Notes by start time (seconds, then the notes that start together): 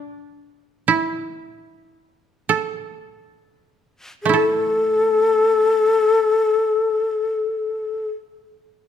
Already playing: D4 E4
0.88 E4
2.49 A4
4.23 A3 A4
4.29 E4
4.33 A4